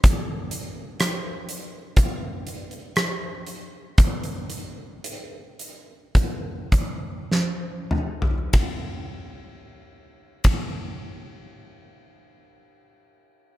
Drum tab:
RD |----------------|----------------|x-----x---------|
HH |x-x-x-x-x-xxx-x-|xxx-x-x-x-x-----|----------------|
SD |----r-------r---|------------o---|----------------|
T2 |----------------|--------------o-|----------------|
FT |----------------|---------------o|----------------|
BD |o-------o-------|o-------o-o-----|o-----o---------|